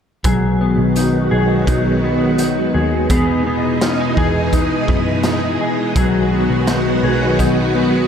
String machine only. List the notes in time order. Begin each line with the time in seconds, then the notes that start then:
0.24 D#3 F#3 G#3 B3 F#4
3.09 B2 E3 D#4 G#4
5.95 D#3 F#3 B3 F#4